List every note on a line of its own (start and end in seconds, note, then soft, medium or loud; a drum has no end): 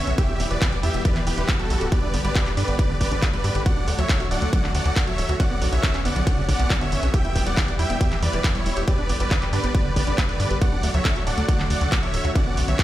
0.00 0.14 D3 medium
0.00 3.62 B3 medium
0.00 0.16 C#4 medium
0.00 0.15 F#4 loud
0.00 0.13 C#5 medium
0.00 0.13 E5 loud
0.07 0.14 B1 medium
0.07 0.14 C#4 medium
0.07 closed hi-hat soft
0.18 1.90 E3 medium
0.18 3.63 G3 medium
0.18 0.46 G4 medium
0.18 0.23 G4 loud
0.18 3.62 G4 loud
0.18 0.46 E5 loud
0.18 kick loud
0.18 closed hi-hat medium
0.29 0.33 E4 medium
0.40 0.46 E1 loud
0.40 0.42 B3 medium
0.40 open hi-hat loud
0.51 0.57 E1 medium
0.51 0.55 G3 medium
0.51 0.78 B4 medium
0.51 0.78 D5 loud
0.51 closed hi-hat soft
0.61 0.64 E3 medium
0.61 kick loud
0.61 clap loud
0.61 closed hi-hat medium
0.72 0.79 G4 medium
0.72 closed hi-hat soft
0.83 0.90 E2 medium
0.83 0.90 E4 loud
0.83 1.02 G4 medium
0.83 1.02 E5 medium
0.83 open hi-hat loud
0.94 1.01 E1 medium
0.94 1.01 B3 medium
0.94 closed hi-hat medium
1.05 1.12 G3 medium
1.05 1.23 B4 medium
1.05 1.23 D5 medium
1.05 kick loud
1.05 closed hi-hat medium
1.16 1.20 E3 loud
1.16 clap soft
1.16 closed hi-hat soft
1.27 1.33 E1 medium
1.27 1.29 E3 medium
1.27 1.54 G4 medium
1.27 1.54 B4 loud
1.27 open hi-hat loud
1.38 1.44 E1 medium
1.38 1.42 E4 medium
1.38 closed hi-hat medium
1.49 1.51 B3 medium
1.49 kick loud
1.49 clap loud
1.49 closed hi-hat medium
1.59 1.66 G3 medium
1.59 1.87 F#4 medium
1.59 1.87 A4 loud
1.59 closed hi-hat soft
1.70 1.77 B1 medium
1.70 1.73 G3 medium
1.70 open hi-hat loud
1.81 1.88 D1 medium
1.81 1.88 G4 medium
1.81 closed hi-hat soft
1.92 5.36 D3 medium
1.92 1.96 G4 loud
1.92 2.19 B4 medium
1.92 2.19 D5 loud
1.92 kick loud
1.92 closed hi-hat medium
2.03 2.07 D4 medium
2.14 2.20 G1 medium
2.14 2.16 B3 medium
2.14 open hi-hat loud
2.24 2.31 G1 medium
2.24 2.29 G3 medium
2.24 2.52 B4 medium
2.24 2.52 D5 loud
2.24 closed hi-hat soft
2.35 2.38 D3 medium
2.35 kick loud
2.35 clap loud
2.35 closed hi-hat medium
2.46 2.53 G4 medium
2.46 clap soft
2.46 closed hi-hat soft
2.57 2.64 G2 medium
2.57 2.64 D4 loud
2.57 2.76 B4 medium
2.57 2.76 D5 medium
2.57 open hi-hat loud
2.68 2.75 G1 medium
2.68 2.75 B3 medium
2.68 closed hi-hat medium
2.79 2.86 G3 medium
2.79 2.97 B4 medium
2.79 2.97 D5 medium
2.79 kick loud
2.79 closed hi-hat medium
2.90 2.94 D3 loud
3.01 3.07 G1 loud
3.01 3.03 D3 medium
3.01 3.28 B4 medium
3.01 3.28 D5 loud
3.01 kick medium
3.01 open hi-hat loud
3.12 3.18 G1 medium
3.12 3.16 D4 medium
3.12 closed hi-hat medium
3.22 3.25 B3 medium
3.22 kick loud
3.22 clap loud
3.22 closed hi-hat medium
3.33 3.40 G3 medium
3.33 3.61 B4 medium
3.33 3.61 D5 loud
3.33 closed hi-hat soft
3.44 3.51 G2 loud
3.44 3.47 G3 medium
3.44 open hi-hat loud
3.55 3.62 G1 medium
3.55 3.62 G4 medium
3.55 closed hi-hat soft
3.66 5.38 F#3 medium
3.66 5.38 A3 medium
3.66 3.70 F#4 loud
3.66 7.10 F#4 medium
3.66 3.94 D5 medium
3.66 3.93 F#5 loud
3.66 kick loud
3.66 closed hi-hat medium
3.77 3.81 D4 medium
3.88 3.94 D2 medium
3.88 3.90 A3 medium
3.88 open hi-hat loud
3.98 4.05 D2 medium
3.98 4.03 F#3 medium
3.98 4.26 C#5 medium
3.98 4.26 E5 loud
3.98 closed hi-hat medium
4.09 4.12 D3 medium
4.09 kick loud
4.09 clap loud
4.09 closed hi-hat medium
4.20 4.27 F#4 medium
4.20 closed hi-hat soft
4.31 4.38 D1 medium
4.31 4.38 D4 loud
4.31 4.50 D5 medium
4.31 4.49 F#5 medium
4.31 open hi-hat loud
4.42 4.49 D2 medium
4.42 4.49 A3 medium
4.42 closed hi-hat medium
4.53 4.60 F#3 medium
4.53 4.71 F#5 medium
4.53 kick loud
4.53 closed hi-hat medium
4.64 4.68 D3 loud
4.64 clap soft
4.74 4.81 D2 loud
4.74 4.77 D3 medium
4.74 5.02 D5 medium
4.74 5.02 F#5 loud
4.74 open hi-hat loud
4.85 4.92 D2 medium
4.85 4.90 D4 medium
4.85 closed hi-hat medium
4.96 4.99 A3 medium
4.96 kick loud
4.96 clap loud
4.96 closed hi-hat medium
5.07 5.14 F#3 medium
5.07 5.35 C#5 medium
5.07 5.35 E5 medium
5.07 closed hi-hat soft
5.18 5.25 D1 loud
5.18 5.21 F#3 medium
5.18 open hi-hat loud
5.29 5.36 D2 medium
5.29 5.36 F#4 medium
5.29 closed hi-hat medium
5.40 7.12 D3 medium
5.40 8.84 B3 medium
5.40 7.12 C#4 medium
5.40 5.44 C#4 loud
5.40 5.67 D5 medium
5.40 5.67 F#5 loud
5.40 kick loud
5.40 closed hi-hat medium
5.51 5.55 B3 medium
5.62 5.68 B1 medium
5.62 5.64 F#3 medium
5.62 open hi-hat loud
5.72 5.79 B1 medium
5.72 5.77 D3 medium
5.72 6.00 C#5 medium
5.72 6.00 E5 loud
5.72 closed hi-hat medium
5.83 5.86 C#3 medium
5.83 kick loud
5.83 clap loud
5.83 closed hi-hat medium
5.94 6.01 C#4 medium
5.94 clap soft
5.94 closed hi-hat soft
6.05 6.12 F#1 medium
6.05 6.12 B3 loud
6.05 6.23 D5 medium
6.05 6.23 F#5 medium
6.05 open hi-hat loud
6.16 6.23 B1 medium
6.16 6.23 F#3 medium
6.16 closed hi-hat medium
6.27 6.34 D3 medium
6.27 6.45 F#5 loud
6.27 kick loud
6.27 closed hi-hat medium
6.38 6.42 C#3 loud
6.48 6.55 B1 loud
6.48 6.51 C#3 medium
6.48 6.76 D5 medium
6.48 6.76 F#5 loud
6.48 kick medium
6.48 open hi-hat loud
6.59 6.66 B1 medium
6.59 6.64 B3 medium
6.59 closed hi-hat medium
6.70 6.73 F#3 medium
6.70 kick loud
6.70 clap loud
6.70 closed hi-hat medium
6.81 6.88 D3 medium
6.81 7.09 C#5 medium
6.81 7.09 E5 loud
6.81 closed hi-hat soft
6.92 6.99 F#1 medium
6.92 6.95 D3 medium
6.92 open hi-hat loud
7.03 7.09 B1 medium
7.03 7.10 C#4 medium
7.03 closed hi-hat soft
7.14 8.86 E3 medium
7.14 8.86 G3 medium
7.14 8.86 G4 loud
7.14 7.18 G4 loud
7.14 7.41 G5 loud
7.14 kick loud
7.14 closed hi-hat medium
7.25 7.29 E4 medium
7.25 closed hi-hat soft
7.35 7.42 E1 medium
7.35 7.38 B3 medium
7.35 kick medium
7.35 open hi-hat loud
7.46 7.53 E1 medium
7.46 7.51 G3 medium
7.46 7.74 D5 medium
7.46 7.74 F#5 loud
7.46 closed hi-hat medium
7.57 7.60 E3 medium
7.57 kick loud
7.57 clap loud
7.57 closed hi-hat medium
7.68 7.75 G4 medium
7.68 closed hi-hat soft
7.79 7.86 E2 medium
7.79 7.86 E4 loud
7.79 7.97 E5 medium
7.79 7.97 G5 medium
7.79 open hi-hat loud
7.90 7.96 E1 medium
7.90 7.97 B3 medium
7.90 closed hi-hat medium
8.01 8.07 G3 medium
8.01 8.19 G4 medium
8.01 8.19 E5 medium
8.01 kick loud
8.01 closed hi-hat medium
8.12 8.16 E3 loud
8.12 clap soft
8.12 closed hi-hat soft
8.22 8.29 E2 loud
8.22 8.25 E3 medium
8.22 8.50 B4 medium
8.22 8.50 D5 loud
8.22 open hi-hat loud
8.33 8.40 E1 medium
8.33 8.38 E4 medium
8.33 closed hi-hat medium
8.44 8.47 B3 medium
8.44 kick loud
8.44 clap loud
8.44 closed hi-hat medium
8.55 8.62 G3 medium
8.55 8.83 E4 medium
8.55 8.83 C#5 loud
8.55 closed hi-hat soft
8.66 8.73 E1 medium
8.66 8.69 G3 medium
8.66 open hi-hat loud
8.77 8.83 E1 medium
8.77 8.84 G4 medium
8.77 closed hi-hat medium
8.87 12.84 D3 medium
8.87 10.60 G3 medium
8.87 10.60 B3 medium
8.87 10.60 G4 loud
8.87 8.92 G4 loud
8.87 9.15 B4 medium
8.87 9.15 D5 loud
8.87 kick loud
8.87 closed hi-hat medium
8.99 9.03 D4 medium
9.09 9.16 G1 loud
9.09 9.12 B3 medium
9.09 open hi-hat loud
9.20 9.27 G1 medium
9.20 9.25 G3 medium
9.20 9.48 B4 medium
9.20 9.48 D5 loud
9.20 closed hi-hat medium
9.31 9.34 D3 medium
9.31 kick loud
9.31 clap loud
9.31 closed hi-hat medium
9.42 9.49 G4 medium
9.42 clap soft
9.42 closed hi-hat soft
9.53 9.59 G2 loud
9.53 9.60 D4 loud
9.53 9.71 B4 medium
9.53 9.71 D5 medium
9.53 open hi-hat loud
9.64 9.70 G1 medium
9.64 9.70 B3 medium
9.64 closed hi-hat medium
9.75 9.81 G3 medium
9.75 9.93 B4 medium
9.75 9.93 D5 medium
9.75 kick loud
9.75 closed hi-hat medium
9.85 9.90 D3 loud
9.96 10.03 G1 medium
9.96 9.99 D3 medium
9.96 10.24 B4 medium
9.96 10.24 D5 loud
9.96 kick medium
9.96 open hi-hat loud
10.07 10.14 G1 medium
10.07 10.12 D4 medium
10.07 closed hi-hat medium
10.18 10.21 B3 medium
10.18 kick loud
10.18 clap loud
10.18 closed hi-hat medium
10.29 10.36 G3 medium
10.29 10.57 B4 medium
10.29 10.57 D5 medium
10.29 closed hi-hat soft
10.40 10.46 G2 medium
10.40 10.43 G3 medium
10.40 open hi-hat loud
10.51 10.57 G1 medium
10.51 10.57 G4 medium
10.51 closed hi-hat medium
10.61 12.34 F#3 medium
10.61 12.34 A3 medium
10.61 10.66 F#4 loud
10.61 12.84 F#4 loud
10.61 10.89 D5 medium
10.61 10.89 F#5 loud
10.61 kick loud
10.61 closed hi-hat medium
10.72 10.77 D4 medium
10.83 10.90 D2 medium
10.83 10.86 A3 medium
10.83 open hi-hat loud
10.94 11.01 D2 medium
10.94 10.99 F#3 medium
10.94 11.22 C#5 medium
10.94 11.22 E5 loud
10.94 closed hi-hat medium
11.05 11.08 D3 medium
11.05 kick loud
11.05 clap loud
11.05 closed hi-hat medium
11.16 11.23 F#4 medium
11.16 closed hi-hat soft
11.27 11.33 D1 medium
11.27 11.34 D4 loud
11.27 11.45 D5 medium
11.27 11.45 F#5 medium
11.27 open hi-hat loud
11.38 11.44 D2 medium
11.38 11.44 A3 medium
11.38 closed hi-hat medium
11.48 11.55 F#3 medium
11.48 11.67 D5 medium
11.48 11.67 F#5 medium
11.48 kick loud
11.48 closed hi-hat medium
11.59 11.64 D3 loud
11.59 clap soft
11.70 11.77 D2 loud
11.70 11.73 D3 medium
11.70 11.98 D5 medium
11.70 11.98 F#5 loud
11.70 open hi-hat loud
11.81 11.88 D2 medium
11.81 11.86 D4 medium
11.81 closed hi-hat medium
11.92 11.95 A3 medium
11.92 kick loud
11.92 clap loud
11.92 closed hi-hat medium
12.03 12.10 F#3 medium
12.03 12.30 C#5 medium
12.03 12.30 E5 loud
12.03 closed hi-hat soft
12.14 12.20 D1 loud
12.14 12.16 F#3 medium
12.14 open hi-hat loud
12.25 12.31 D2 medium
12.25 12.31 F#4 medium
12.25 closed hi-hat medium
12.35 12.84 B3 medium
12.35 12.40 C#4 loud
12.35 12.84 C#4 medium
12.35 12.63 D5 medium
12.35 12.63 F#5 loud
12.35 kick loud
12.35 closed hi-hat medium
12.46 12.51 B3 medium
12.57 12.64 B1 medium
12.57 12.60 F#3 medium
12.57 open hi-hat loud
12.68 12.75 B1 medium
12.68 12.73 D3 medium
12.68 12.84 C#5 medium
12.68 12.84 E5 loud
12.68 closed hi-hat soft
12.79 12.82 C#3 medium
12.79 kick loud
12.79 clap loud
12.79 closed hi-hat medium